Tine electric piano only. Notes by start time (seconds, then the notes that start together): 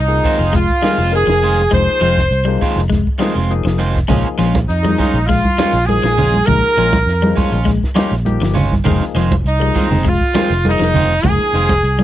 0.08 F3 A#3 D#4 G#4
0.82 F3 A#3 D#4 G#4
1.12 F3 A#3 D#4 A#4
1.71 F3 A#3 D#4 G#4
2.47 F3 G#3 A#3 D#4
3.20 F3 A#3 D#4 G#4
3.51 F3 A#3 D#4 G#4
4.10 F3 A#3 D#4 G#4
4.83 F3 G#3 A#3 D#4
5.59 F3 A#3 D#4 F4
5.89 F3 A#3 D#4 G#4
6.48 F3 A#3 D#4 G#4
7.23 F3 G#3 A#3 D#4
7.95 F3 A#3 D#4 G4
8.25 F3 A#3 D#4 G4
8.85 F3 A#3 D#4 G#4
9.59 F3 G#3 A#3 D#4
10.34 F3 A#3 D#4 G#4
10.66 F3 A#3 D#4 G#4
11.24 F3 A#3 D#4 G#4